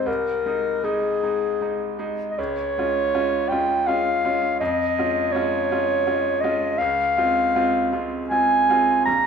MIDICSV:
0, 0, Header, 1, 3, 480
1, 0, Start_track
1, 0, Tempo, 766284
1, 46, Time_signature, 3, 2, 24, 8
1, 1967, Tempo, 730816
1, 4367, Tempo, 758534
1, 5932, End_track
2, 0, Start_track
2, 0, Title_t, "Clarinet"
2, 0, Program_c, 0, 71
2, 45, Note_on_c, 0, 70, 72
2, 529, Note_on_c, 0, 68, 75
2, 538, Note_off_c, 0, 70, 0
2, 1247, Note_off_c, 0, 68, 0
2, 1446, Note_on_c, 0, 75, 54
2, 1493, Note_on_c, 0, 73, 75
2, 1503, Note_off_c, 0, 75, 0
2, 2196, Note_on_c, 0, 79, 74
2, 2206, Note_off_c, 0, 73, 0
2, 2446, Note_on_c, 0, 77, 72
2, 2456, Note_off_c, 0, 79, 0
2, 2922, Note_off_c, 0, 77, 0
2, 2926, Note_on_c, 0, 75, 75
2, 3400, Note_on_c, 0, 73, 80
2, 3410, Note_off_c, 0, 75, 0
2, 4114, Note_on_c, 0, 75, 81
2, 4124, Note_off_c, 0, 73, 0
2, 4358, Note_on_c, 0, 77, 79
2, 4368, Note_off_c, 0, 75, 0
2, 5155, Note_off_c, 0, 77, 0
2, 5318, Note_on_c, 0, 80, 86
2, 5776, Note_off_c, 0, 80, 0
2, 5799, Note_on_c, 0, 82, 88
2, 5932, Note_off_c, 0, 82, 0
2, 5932, End_track
3, 0, Start_track
3, 0, Title_t, "Grand piano"
3, 0, Program_c, 1, 0
3, 0, Control_c, 1, 64, 127
3, 0, Note_on_c, 1, 56, 39
3, 0, Note_on_c, 1, 63, 40
3, 37, Note_on_c, 1, 36, 48
3, 58, Control_c, 1, 64, 0
3, 63, Note_off_c, 1, 63, 0
3, 64, Note_off_c, 1, 56, 0
3, 155, Control_c, 1, 64, 127
3, 275, Note_off_c, 1, 36, 0
3, 286, Note_on_c, 1, 56, 38
3, 290, Note_on_c, 1, 63, 45
3, 503, Note_off_c, 1, 56, 0
3, 505, Note_off_c, 1, 63, 0
3, 524, Note_on_c, 1, 56, 42
3, 528, Note_on_c, 1, 63, 45
3, 741, Note_off_c, 1, 56, 0
3, 744, Note_off_c, 1, 63, 0
3, 771, Note_on_c, 1, 56, 40
3, 772, Note_on_c, 1, 63, 42
3, 984, Note_off_c, 1, 56, 0
3, 985, Note_off_c, 1, 63, 0
3, 1007, Note_on_c, 1, 56, 38
3, 1014, Note_on_c, 1, 63, 40
3, 1222, Note_off_c, 1, 56, 0
3, 1227, Note_off_c, 1, 63, 0
3, 1245, Note_on_c, 1, 56, 43
3, 1247, Note_on_c, 1, 63, 46
3, 1465, Note_off_c, 1, 56, 0
3, 1466, Note_off_c, 1, 63, 0
3, 1493, Note_on_c, 1, 37, 51
3, 1502, Control_c, 1, 64, 0
3, 1588, Control_c, 1, 64, 127
3, 1726, Note_off_c, 1, 37, 0
3, 1741, Note_on_c, 1, 56, 39
3, 1746, Note_on_c, 1, 61, 36
3, 1747, Note_on_c, 1, 65, 44
3, 1947, Note_off_c, 1, 56, 0
3, 1950, Note_off_c, 1, 61, 0
3, 1951, Note_off_c, 1, 65, 0
3, 1969, Note_on_c, 1, 56, 44
3, 1971, Note_on_c, 1, 61, 46
3, 1972, Note_on_c, 1, 65, 49
3, 2183, Note_off_c, 1, 56, 0
3, 2184, Note_off_c, 1, 61, 0
3, 2185, Note_off_c, 1, 65, 0
3, 2211, Note_on_c, 1, 56, 40
3, 2217, Note_on_c, 1, 61, 43
3, 2217, Note_on_c, 1, 65, 44
3, 2424, Note_off_c, 1, 56, 0
3, 2427, Note_off_c, 1, 61, 0
3, 2427, Note_off_c, 1, 65, 0
3, 2450, Note_on_c, 1, 56, 39
3, 2454, Note_on_c, 1, 61, 41
3, 2456, Note_on_c, 1, 65, 45
3, 2665, Note_off_c, 1, 56, 0
3, 2666, Note_off_c, 1, 61, 0
3, 2668, Note_off_c, 1, 65, 0
3, 2695, Note_on_c, 1, 61, 41
3, 2696, Note_on_c, 1, 56, 46
3, 2699, Note_on_c, 1, 65, 45
3, 2909, Note_off_c, 1, 56, 0
3, 2909, Note_off_c, 1, 61, 0
3, 2911, Note_off_c, 1, 65, 0
3, 2932, Note_on_c, 1, 41, 57
3, 2938, Control_c, 1, 64, 0
3, 3055, Control_c, 1, 64, 127
3, 3165, Note_off_c, 1, 41, 0
3, 3178, Note_on_c, 1, 56, 43
3, 3178, Note_on_c, 1, 61, 40
3, 3183, Note_on_c, 1, 65, 41
3, 3391, Note_off_c, 1, 56, 0
3, 3391, Note_off_c, 1, 61, 0
3, 3394, Note_off_c, 1, 65, 0
3, 3415, Note_on_c, 1, 56, 47
3, 3419, Note_on_c, 1, 61, 46
3, 3424, Note_on_c, 1, 65, 48
3, 3626, Note_off_c, 1, 56, 0
3, 3628, Note_off_c, 1, 61, 0
3, 3630, Note_off_c, 1, 65, 0
3, 3656, Note_on_c, 1, 56, 39
3, 3658, Note_on_c, 1, 61, 45
3, 3662, Note_on_c, 1, 65, 48
3, 3864, Note_off_c, 1, 56, 0
3, 3865, Note_off_c, 1, 61, 0
3, 3867, Note_off_c, 1, 65, 0
3, 3889, Note_on_c, 1, 56, 44
3, 3891, Note_on_c, 1, 61, 40
3, 3892, Note_on_c, 1, 65, 47
3, 4101, Note_off_c, 1, 56, 0
3, 4102, Note_off_c, 1, 61, 0
3, 4103, Note_off_c, 1, 65, 0
3, 4131, Note_on_c, 1, 56, 48
3, 4135, Note_on_c, 1, 61, 45
3, 4138, Note_on_c, 1, 65, 46
3, 4345, Note_off_c, 1, 56, 0
3, 4347, Note_off_c, 1, 61, 0
3, 4349, Note_off_c, 1, 65, 0
3, 4373, Control_c, 1, 64, 0
3, 4375, Note_on_c, 1, 37, 56
3, 4486, Control_c, 1, 64, 127
3, 4600, Note_off_c, 1, 37, 0
3, 4606, Note_on_c, 1, 56, 41
3, 4611, Note_on_c, 1, 65, 47
3, 4613, Note_on_c, 1, 60, 40
3, 4821, Note_off_c, 1, 56, 0
3, 4824, Note_off_c, 1, 65, 0
3, 4825, Note_off_c, 1, 60, 0
3, 4848, Note_on_c, 1, 56, 45
3, 4852, Note_on_c, 1, 60, 45
3, 4853, Note_on_c, 1, 65, 50
3, 5062, Note_off_c, 1, 56, 0
3, 5065, Note_off_c, 1, 60, 0
3, 5065, Note_off_c, 1, 65, 0
3, 5083, Note_on_c, 1, 56, 41
3, 5087, Note_on_c, 1, 60, 38
3, 5087, Note_on_c, 1, 65, 47
3, 5299, Note_off_c, 1, 56, 0
3, 5302, Note_off_c, 1, 60, 0
3, 5302, Note_off_c, 1, 65, 0
3, 5325, Note_on_c, 1, 56, 42
3, 5329, Note_on_c, 1, 60, 40
3, 5331, Note_on_c, 1, 65, 42
3, 5541, Note_off_c, 1, 56, 0
3, 5543, Note_off_c, 1, 60, 0
3, 5544, Note_off_c, 1, 65, 0
3, 5566, Note_on_c, 1, 56, 42
3, 5573, Note_on_c, 1, 60, 44
3, 5576, Note_on_c, 1, 65, 46
3, 5781, Note_off_c, 1, 56, 0
3, 5785, Note_off_c, 1, 60, 0
3, 5787, Note_off_c, 1, 65, 0
3, 5806, Note_on_c, 1, 34, 49
3, 5814, Control_c, 1, 64, 0
3, 5908, Control_c, 1, 64, 127
3, 5932, Note_off_c, 1, 34, 0
3, 5932, End_track
0, 0, End_of_file